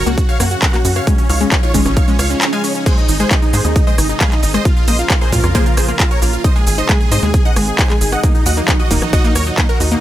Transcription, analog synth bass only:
0, 0, Header, 1, 2, 480
1, 0, Start_track
1, 0, Tempo, 447761
1, 1149, Time_signature, 4, 2, 24, 8
1, 10725, End_track
2, 0, Start_track
2, 0, Title_t, "Analog synth bass"
2, 0, Program_c, 0, 38
2, 69, Note_on_c, 0, 37, 88
2, 242, Note_off_c, 0, 37, 0
2, 429, Note_on_c, 0, 42, 81
2, 602, Note_off_c, 0, 42, 0
2, 909, Note_on_c, 0, 42, 87
2, 1082, Note_off_c, 0, 42, 0
2, 1389, Note_on_c, 0, 37, 95
2, 1562, Note_off_c, 0, 37, 0
2, 1869, Note_on_c, 0, 32, 88
2, 1955, Note_off_c, 0, 32, 0
2, 1990, Note_on_c, 0, 32, 93
2, 2162, Note_off_c, 0, 32, 0
2, 2349, Note_on_c, 0, 37, 99
2, 2522, Note_off_c, 0, 37, 0
2, 3309, Note_on_c, 0, 32, 96
2, 3482, Note_off_c, 0, 32, 0
2, 3789, Note_on_c, 0, 44, 84
2, 3875, Note_off_c, 0, 44, 0
2, 3909, Note_on_c, 0, 39, 85
2, 4082, Note_off_c, 0, 39, 0
2, 4269, Note_on_c, 0, 32, 85
2, 4442, Note_off_c, 0, 32, 0
2, 4749, Note_on_c, 0, 32, 85
2, 4922, Note_off_c, 0, 32, 0
2, 5229, Note_on_c, 0, 34, 93
2, 5402, Note_off_c, 0, 34, 0
2, 5708, Note_on_c, 0, 46, 86
2, 5795, Note_off_c, 0, 46, 0
2, 5829, Note_on_c, 0, 41, 88
2, 6002, Note_off_c, 0, 41, 0
2, 6189, Note_on_c, 0, 34, 81
2, 6362, Note_off_c, 0, 34, 0
2, 6669, Note_on_c, 0, 34, 85
2, 6842, Note_off_c, 0, 34, 0
2, 7148, Note_on_c, 0, 32, 94
2, 7322, Note_off_c, 0, 32, 0
2, 7629, Note_on_c, 0, 44, 87
2, 7715, Note_off_c, 0, 44, 0
2, 7748, Note_on_c, 0, 39, 92
2, 7922, Note_off_c, 0, 39, 0
2, 8108, Note_on_c, 0, 32, 85
2, 8282, Note_off_c, 0, 32, 0
2, 8589, Note_on_c, 0, 32, 84
2, 8762, Note_off_c, 0, 32, 0
2, 9068, Note_on_c, 0, 39, 102
2, 9242, Note_off_c, 0, 39, 0
2, 9549, Note_on_c, 0, 27, 90
2, 9635, Note_off_c, 0, 27, 0
2, 9669, Note_on_c, 0, 34, 84
2, 9842, Note_off_c, 0, 34, 0
2, 10028, Note_on_c, 0, 39, 86
2, 10202, Note_off_c, 0, 39, 0
2, 10508, Note_on_c, 0, 39, 86
2, 10682, Note_off_c, 0, 39, 0
2, 10725, End_track
0, 0, End_of_file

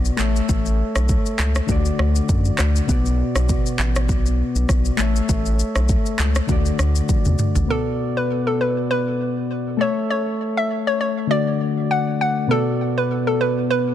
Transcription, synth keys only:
0, 0, Header, 1, 2, 480
1, 0, Start_track
1, 0, Key_signature, 2, "minor"
1, 0, Tempo, 600000
1, 394, Time_signature, 4, 2, 24, 8
1, 11156, End_track
2, 0, Start_track
2, 0, Title_t, "Synth keys"
2, 0, Program_c, 0, 88
2, 0, Control_c, 0, 64, 127
2, 0, Note_on_c, 0, 47, 79
2, 0, Note_on_c, 0, 59, 70
2, 0, Note_on_c, 0, 66, 69
2, 0, Note_on_c, 0, 74, 86
2, 111, Note_off_c, 0, 47, 0
2, 118, Note_off_c, 0, 59, 0
2, 125, Note_off_c, 0, 66, 0
2, 131, Note_off_c, 0, 74, 0
2, 133, Note_on_c, 0, 57, 79
2, 146, Note_on_c, 0, 69, 71
2, 159, Note_on_c, 0, 73, 68
2, 163, Control_c, 0, 64, 0
2, 173, Note_on_c, 0, 76, 85
2, 285, Control_c, 0, 64, 127
2, 1319, Note_off_c, 0, 57, 0
2, 1326, Note_off_c, 0, 69, 0
2, 1332, Note_on_c, 0, 50, 74
2, 1333, Note_off_c, 0, 73, 0
2, 1340, Note_off_c, 0, 76, 0
2, 1346, Note_on_c, 0, 57, 70
2, 1359, Note_on_c, 0, 66, 70
2, 1365, Control_c, 0, 64, 0
2, 1372, Note_on_c, 0, 74, 85
2, 1524, Control_c, 0, 64, 127
2, 2284, Note_off_c, 0, 50, 0
2, 2291, Note_off_c, 0, 57, 0
2, 2294, Note_on_c, 0, 47, 78
2, 2298, Note_off_c, 0, 66, 0
2, 2304, Note_off_c, 0, 74, 0
2, 2307, Note_on_c, 0, 59, 73
2, 2321, Note_on_c, 0, 66, 71
2, 2325, Control_c, 0, 64, 0
2, 2334, Note_on_c, 0, 74, 83
2, 2445, Control_c, 0, 64, 127
2, 3952, Note_off_c, 0, 47, 0
2, 3959, Note_off_c, 0, 59, 0
2, 3966, Note_off_c, 0, 66, 0
2, 3972, Note_off_c, 0, 74, 0
2, 3974, Note_on_c, 0, 57, 79
2, 3988, Note_on_c, 0, 69, 71
2, 4001, Note_on_c, 0, 73, 67
2, 4006, Control_c, 0, 64, 0
2, 4014, Note_on_c, 0, 76, 86
2, 4141, Control_c, 0, 64, 127
2, 5160, Note_off_c, 0, 57, 0
2, 5167, Note_off_c, 0, 69, 0
2, 5174, Note_off_c, 0, 73, 0
2, 5174, Note_on_c, 0, 50, 73
2, 5181, Note_off_c, 0, 76, 0
2, 5187, Note_on_c, 0, 57, 69
2, 5200, Note_on_c, 0, 66, 65
2, 5205, Control_c, 0, 64, 0
2, 5214, Note_on_c, 0, 74, 79
2, 5349, Control_c, 0, 64, 127
2, 6125, Note_off_c, 0, 50, 0
2, 6131, Note_off_c, 0, 57, 0
2, 6135, Note_on_c, 0, 47, 70
2, 6138, Note_off_c, 0, 66, 0
2, 6145, Note_off_c, 0, 74, 0
2, 6148, Note_on_c, 0, 59, 63
2, 6162, Note_on_c, 0, 66, 64
2, 6163, Control_c, 0, 64, 0
2, 6175, Note_on_c, 0, 74, 82
2, 6283, Control_c, 0, 64, 127
2, 7793, Note_off_c, 0, 47, 0
2, 7799, Note_off_c, 0, 59, 0
2, 7806, Note_off_c, 0, 66, 0
2, 7813, Note_off_c, 0, 74, 0
2, 7816, Note_on_c, 0, 57, 70
2, 7829, Note_on_c, 0, 69, 65
2, 7843, Note_on_c, 0, 73, 65
2, 7844, Control_c, 0, 64, 0
2, 7856, Note_on_c, 0, 76, 77
2, 8001, Control_c, 0, 64, 127
2, 9001, Note_off_c, 0, 57, 0
2, 9008, Note_off_c, 0, 69, 0
2, 9015, Note_off_c, 0, 73, 0
2, 9015, Note_on_c, 0, 50, 68
2, 9021, Note_off_c, 0, 76, 0
2, 9028, Note_on_c, 0, 57, 64
2, 9041, Note_on_c, 0, 66, 61
2, 9046, Control_c, 0, 64, 0
2, 9055, Note_on_c, 0, 74, 76
2, 9180, Control_c, 0, 64, 127
2, 9966, Note_off_c, 0, 50, 0
2, 9972, Note_off_c, 0, 57, 0
2, 9977, Note_on_c, 0, 47, 72
2, 9979, Note_off_c, 0, 66, 0
2, 9986, Note_off_c, 0, 74, 0
2, 9990, Note_on_c, 0, 59, 69
2, 10004, Note_on_c, 0, 66, 66
2, 10005, Control_c, 0, 64, 0
2, 10017, Note_on_c, 0, 74, 79
2, 10128, Control_c, 0, 64, 127
2, 11156, Note_off_c, 0, 47, 0
2, 11156, Note_off_c, 0, 59, 0
2, 11156, Note_off_c, 0, 66, 0
2, 11156, Note_off_c, 0, 74, 0
2, 11156, End_track
0, 0, End_of_file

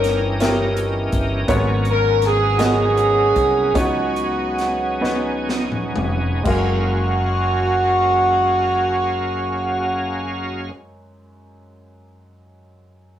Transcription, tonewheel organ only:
0, 0, Header, 1, 2, 480
1, 0, Start_track
1, 0, Key_signature, 6, "major"
1, 0, Tempo, 732601
1, 972, Time_signature, 6, 3, 24, 8
1, 1944, Tempo, 807537
1, 2904, Tempo, 892857
1, 3384, Tempo, 978793
1, 3864, Tempo, 1029160
1, 7007, End_track
2, 0, Start_track
2, 0, Title_t, "Tonewheel organ"
2, 0, Program_c, 0, 16
2, 0, Note_on_c, 0, 52, 52
2, 0, Note_on_c, 0, 61, 48
2, 0, Note_on_c, 0, 67, 64
2, 0, Note_on_c, 0, 70, 49
2, 0, Note_on_c, 0, 75, 46
2, 951, Note_off_c, 0, 61, 0
2, 960, Note_off_c, 0, 52, 0
2, 963, Note_off_c, 0, 67, 0
2, 964, Note_off_c, 0, 75, 0
2, 972, Note_on_c, 0, 61, 53
2, 972, Note_on_c, 0, 68, 61
2, 974, Note_on_c, 0, 59, 47
2, 976, Note_on_c, 0, 54, 56
2, 2392, Note_off_c, 0, 70, 0
2, 2397, Note_off_c, 0, 68, 0
2, 2417, Note_on_c, 0, 63, 49
2, 2417, Note_on_c, 0, 68, 57
2, 3845, Note_off_c, 0, 61, 0
2, 3846, Note_off_c, 0, 54, 0
2, 3846, Note_off_c, 0, 59, 0
2, 3854, Note_off_c, 0, 63, 0
2, 3854, Note_off_c, 0, 68, 0
2, 3868, Note_on_c, 0, 54, 52
2, 3870, Note_on_c, 0, 68, 57
2, 3870, Note_on_c, 0, 77, 44
2, 3873, Note_on_c, 0, 58, 46
2, 3873, Note_on_c, 0, 61, 47
2, 5843, Note_off_c, 0, 54, 0
2, 5844, Note_off_c, 0, 68, 0
2, 5845, Note_off_c, 0, 77, 0
2, 5847, Note_off_c, 0, 61, 0
2, 5848, Note_off_c, 0, 58, 0
2, 7007, End_track
0, 0, End_of_file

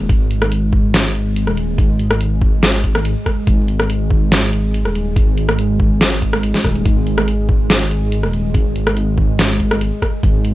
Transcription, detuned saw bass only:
0, 0, Header, 1, 2, 480
1, 0, Start_track
1, 0, Tempo, 422535
1, 107, Time_signature, 4, 2, 24, 8
1, 11973, End_track
2, 0, Start_track
2, 0, Title_t, "Detuned saw bass"
2, 0, Program_c, 0, 39
2, 107, Note_on_c, 0, 32, 98
2, 1672, Note_on_c, 0, 27, 101
2, 1689, Note_off_c, 0, 32, 0
2, 2011, Note_off_c, 0, 27, 0
2, 2024, Note_on_c, 0, 32, 103
2, 3575, Note_off_c, 0, 32, 0
2, 3943, Note_on_c, 0, 32, 104
2, 5509, Note_on_c, 0, 27, 105
2, 5526, Note_off_c, 0, 32, 0
2, 5850, Note_off_c, 0, 27, 0
2, 5864, Note_on_c, 0, 32, 103
2, 7415, Note_off_c, 0, 32, 0
2, 7545, Note_on_c, 0, 27, 99
2, 7768, Note_off_c, 0, 27, 0
2, 7786, Note_on_c, 0, 32, 101
2, 9350, Note_on_c, 0, 27, 104
2, 9367, Note_off_c, 0, 32, 0
2, 9691, Note_off_c, 0, 27, 0
2, 9705, Note_on_c, 0, 32, 106
2, 11256, Note_off_c, 0, 32, 0
2, 11623, Note_on_c, 0, 32, 103
2, 11973, Note_off_c, 0, 32, 0
2, 11973, End_track
0, 0, End_of_file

